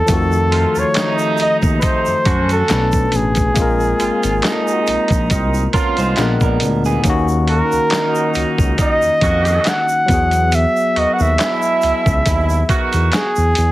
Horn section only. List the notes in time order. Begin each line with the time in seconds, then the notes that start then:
0.51 C3 A3 F4
0.95 C3 A3 D#4
1.82 C3 A3 D#4
2.26 D3 C#4 F#4
4.00 C#3 C4 F4
4.43 C3 G#3 D#4
5.30 D#3 C4 D#4
5.74 D3 B3 F4
7.48 C#3 A#3 F#4
7.91 A#2 F#3 D#4
8.78 A#2 F#3 D#4
9.22 C#3 A#3 F#4
10.96 D#3 B3 F#4
11.39 B2 G#3 E4
12.26 B2 G#3 E4
12.69 D#3 B3 F#4